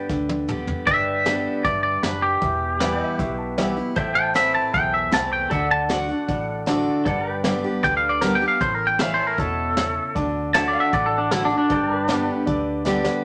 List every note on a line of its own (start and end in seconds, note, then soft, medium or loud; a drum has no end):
0.00 0.85 B4 medium
0.00 0.86 D5 medium
0.00 0.87 G5 medium
0.09 0.69 D2 medium
0.09 0.47 D3 medium
0.09 kick loud
0.09 snare medium
0.29 high tom medium
0.48 0.85 D3 medium
0.48 0.86 G3 medium
0.48 0.86 B3 medium
0.48 0.86 G4 medium
0.48 mid tom medium
0.67 floor tom medium
0.86 1.46 G1 medium
0.86 1.61 G2 medium
0.86 1.21 D4 medium
0.86 1.21 G4 medium
0.86 1.21 B4 medium
0.86 2.40 B4 medium
0.86 1.21 D5 medium
0.86 2.41 D5 medium
0.86 1.62 E5 medium
0.86 2.41 G5 medium
0.86 kick loud
0.86 open hi-hat medium
1.25 1.62 D3 medium
1.25 1.63 G3 medium
1.25 1.63 B3 medium
1.25 1.60 D4 medium
1.25 1.60 G4 medium
1.25 1.64 G4 medium
1.25 1.60 B4 medium
1.25 1.60 D5 medium
1.25 snare loud
1.25 open hi-hat medium
1.64 1.98 G1 medium
1.64 2.01 G2 medium
1.64 1.98 D4 medium
1.64 1.99 G4 medium
1.64 1.99 B4 medium
1.64 1.82 D5 medium
1.64 1.99 E5 medium
1.64 kick loud
1.64 open hi-hat medium
1.83 2.03 D5 medium
2.03 2.36 F#1 medium
2.03 2.40 F#2 medium
2.03 2.37 D4 medium
2.03 2.37 G4 medium
2.03 2.22 B4 medium
2.03 2.37 B4 medium
2.03 2.37 D5 medium
2.03 snare loud
2.22 3.35 G4 medium
2.41 3.01 E1 medium
2.41 3.15 E2 medium
2.41 2.76 E4 medium
2.41 2.76 G4 medium
2.41 2.76 B4 medium
2.41 2.76 E5 medium
2.41 kick loud
2.41 open hi-hat medium
2.80 3.17 E3 medium
2.80 3.17 G3 loud
2.80 3.18 B3 medium
2.80 3.15 E4 medium
2.80 3.18 E4 medium
2.80 3.15 G4 medium
2.80 3.95 B4 medium
2.80 3.15 B4 medium
2.80 3.06 D5 medium
2.80 3.15 E5 medium
2.80 3.97 G5 medium
2.80 snare loud
3.06 3.96 E5 medium
3.19 3.78 B1 medium
3.19 3.93 B2 medium
3.19 3.53 E4 medium
3.19 3.53 G4 medium
3.19 3.53 B4 medium
3.19 3.53 E5 medium
3.19 kick loud
3.19 open hi-hat medium
3.38 3.56 A5 medium
3.58 3.76 E3 medium
3.58 3.77 G3 medium
3.58 3.77 B3 medium
3.58 3.92 E4 medium
3.58 3.75 E4 loud
3.58 3.92 G4 medium
3.58 3.92 B4 medium
3.58 3.75 E5 loud
3.58 3.76 G5 medium
3.58 snare loud
3.77 3.97 B3 soft
3.77 3.96 E4 medium
3.77 3.95 E5 medium
3.96 4.56 A1 medium
3.96 4.70 A2 medium
3.96 4.30 E4 medium
3.96 4.30 A4 medium
3.96 4.31 C5 medium
3.96 5.50 C5 medium
3.96 4.31 E5 loud
3.96 5.50 E5 medium
3.96 4.24 G5 medium
3.96 kick loud
3.96 open hi-hat soft
4.15 4.34 G5 loud
4.24 5.51 A5 medium
4.34 4.72 E3 medium
4.34 4.72 A3 medium
4.34 4.73 C4 medium
4.34 4.69 E4 medium
4.34 4.73 E4 medium
4.34 4.69 A4 medium
4.34 4.69 C5 medium
4.34 4.69 E5 medium
4.34 4.54 E5 medium
4.34 snare loud
4.55 4.73 A5 medium
4.73 5.07 B1 medium
4.73 5.48 E2 medium
4.73 5.08 E4 medium
4.73 5.08 A4 medium
4.73 5.08 C5 medium
4.73 5.08 E5 medium
4.73 4.93 G5 loud
4.73 kick loud
4.73 open hi-hat medium
4.94 5.12 E5 medium
5.11 5.45 C2 medium
5.11 5.49 E3 medium
5.11 5.49 A3 medium
5.11 5.50 C4 medium
5.11 5.46 E4 medium
5.11 5.50 E4 medium
5.11 5.46 A4 medium
5.11 5.46 C5 medium
5.11 5.46 G5 medium
5.11 5.32 A5 medium
5.11 snare loud
5.33 5.51 G5 medium
5.50 6.10 D2 medium
5.50 5.88 D3 medium
5.50 5.85 D4 medium
5.50 5.85 F#4 medium
5.50 7.04 A4 medium
5.50 5.85 A4 medium
5.50 5.85 D5 medium
5.50 7.05 D5 medium
5.50 5.70 E5 medium
5.50 7.05 F#5 medium
5.50 kick loud
5.50 open hi-hat medium
5.71 5.91 A5 medium
5.89 6.08 D3 medium
5.89 6.09 A3 medium
5.89 6.24 D4 medium
5.89 6.09 D4 medium
5.89 6.24 F#4 medium
5.89 6.07 F#4 medium
5.89 6.24 A4 medium
5.89 6.24 D5 medium
5.89 7.03 F#5 loud
5.89 snare loud
6.09 6.29 D4 soft
6.09 6.28 F#4 medium
6.28 6.88 A1 medium
6.28 7.02 A2 medium
6.28 6.63 D4 medium
6.28 6.62 F#4 medium
6.28 6.63 A4 medium
6.28 6.63 D5 medium
6.28 kick loud
6.28 open hi-hat medium
6.66 7.04 D3 medium
6.66 7.04 A3 medium
6.66 7.01 D4 medium
6.66 7.05 D4 medium
6.66 7.01 F#4 medium
6.66 7.05 F#4 loud
6.66 7.01 A4 medium
6.66 7.01 D5 loud
6.66 snare loud
7.05 7.65 G1 medium
7.05 7.80 G2 medium
7.05 7.40 D4 medium
7.05 7.40 G4 medium
7.05 7.30 A4 medium
7.05 7.40 B4 medium
7.05 7.40 D5 medium
7.05 8.60 D5 medium
7.05 7.27 F#5 medium
7.05 kick loud
7.05 open hi-hat medium
7.27 8.59 B4 medium
7.27 8.60 G5 medium
7.44 7.63 D3 medium
7.44 7.64 G3 medium
7.44 7.64 B3 medium
7.44 7.79 D4 medium
7.44 7.79 G4 medium
7.44 7.63 G4 loud
7.44 7.79 B4 medium
7.44 7.79 D5 loud
7.44 snare loud
7.64 7.84 B3 soft
7.64 7.83 G4 medium
7.83 8.42 D2 medium
7.83 8.21 D3 medium
7.83 8.17 D4 medium
7.83 8.17 G4 medium
7.83 8.17 B4 medium
7.83 8.17 D5 medium
7.83 7.96 G5 medium
7.83 kick loud
7.83 open hi-hat soft
7.97 8.09 F5 medium
8.09 8.22 D5 medium
8.21 8.41 D3 medium
8.21 8.41 G3 medium
8.21 8.42 B3 medium
8.21 8.56 D4 medium
8.21 8.56 G4 medium
8.21 8.41 G4 loud
8.21 8.34 A#4 medium
8.21 8.56 B4 medium
8.21 8.56 D5 medium
8.21 snare loud
8.35 8.47 G5 loud
8.42 8.62 B3 soft
8.42 8.60 G4 medium
8.48 8.60 F5 medium
8.60 9.20 A1 medium
8.60 9.35 A2 loud
8.60 8.95 C#4 medium
8.60 8.95 E4 medium
8.60 8.95 A4 medium
8.60 8.75 C5 medium
8.60 8.95 C#5 medium
8.60 kick loud
8.60 open hi-hat medium
8.75 8.87 A#4 loud
8.87 9.01 G5 loud
8.99 9.36 E3 medium
8.99 9.37 A3 medium
8.99 9.33 C#4 medium
8.99 9.37 C#4 loud
8.99 9.33 E4 medium
8.99 9.37 E4 loud
8.99 9.33 A4 medium
8.99 10.15 A4 medium
8.99 9.34 C#5 medium
8.99 9.21 D5 medium
8.99 10.15 E5 medium
8.99 9.13 F5 loud
8.99 snare loud
9.14 9.27 C5 medium
9.21 10.15 C#5 medium
9.27 9.39 A#4 medium
9.38 9.97 E1 medium
9.38 9.76 B2 medium
9.38 9.72 C#4 medium
9.38 9.72 E4 medium
9.38 9.72 A4 medium
9.38 10.14 A4 loud
9.38 9.72 C#5 medium
9.38 kick loud
9.38 open hi-hat medium
9.77 10.14 C#3 medium
9.77 10.11 C#4 medium
9.77 10.11 E4 medium
9.77 10.11 A4 medium
9.77 10.11 C#5 medium
9.77 snare loud
9.77 open hi-hat medium
10.15 10.75 D2 loud
10.15 10.53 D3 medium
10.15 10.49 D4 medium
10.15 10.49 F#4 medium
10.15 10.50 A4 medium
10.15 10.49 D5 loud
10.15 kick loud
10.15 open hi-hat medium
10.54 10.91 D3 medium
10.54 10.91 A3 medium
10.54 10.88 D4 medium
10.54 10.92 D4 medium
10.54 10.88 F#4 medium
10.54 10.92 F#4 medium
10.54 10.88 A4 medium
10.54 11.69 A4 medium
10.54 10.75 C#5 medium
10.54 10.82 E5 medium
10.54 10.67 A5 loud
10.54 snare loud
10.68 10.80 D5 loud
10.75 11.70 D5 medium
10.80 10.93 E5 loud
10.80 11.70 F#5 medium
10.92 11.52 A1 medium
10.92 11.66 A2 medium
10.92 11.27 D4 medium
10.92 11.27 F#4 medium
10.92 11.27 A4 medium
10.92 11.27 D5 medium
10.92 11.06 D5 loud
10.92 kick loud
10.92 open hi-hat medium
11.06 11.18 A4 medium
11.18 11.31 D4 loud
11.31 11.50 D3 medium
11.31 11.50 A3 medium
11.31 11.65 D4 medium
11.31 11.51 D4 loud
11.31 11.44 E4 loud
11.31 11.65 F#4 medium
11.31 11.49 F#4 loud
11.31 11.65 A4 medium
11.31 11.65 D5 medium
11.31 snare loud
11.45 11.57 D4 loud
11.50 11.70 D4 medium
11.50 11.69 F#4 medium
11.58 12.33 D4 medium
11.69 12.29 G1 loud
11.69 12.44 G2 loud
11.69 12.04 D4 medium
11.69 12.04 G4 medium
11.69 11.96 A4 medium
11.69 12.04 B4 medium
11.69 12.04 D5 medium
11.69 13.24 D5 medium
11.69 kick loud
11.69 open hi-hat medium
11.73 13.24 G5 medium
11.96 13.24 B4 medium
12.08 12.45 D3 medium
12.08 12.45 G3 medium
12.08 12.46 B3 medium
12.08 12.42 D4 medium
12.08 12.42 G4 medium
12.08 12.46 G4 loud
12.08 12.43 B4 medium
12.08 12.42 D5 loud
12.08 snare loud
12.46 13.06 D2 medium
12.46 12.84 D3 loud
12.46 12.81 D4 medium
12.46 12.81 G4 medium
12.46 12.81 B4 medium
12.46 12.81 D5 loud
12.46 kick loud
12.46 open hi-hat medium
12.85 13.22 D3 loud
12.85 13.23 G3 loud
12.85 13.23 B3 loud
12.85 13.20 D4 loud
12.85 13.20 G4 medium
12.85 13.24 G4 loud
12.85 13.20 B4 medium
12.85 13.20 D5 loud
12.85 snare medium
13.04 snare loud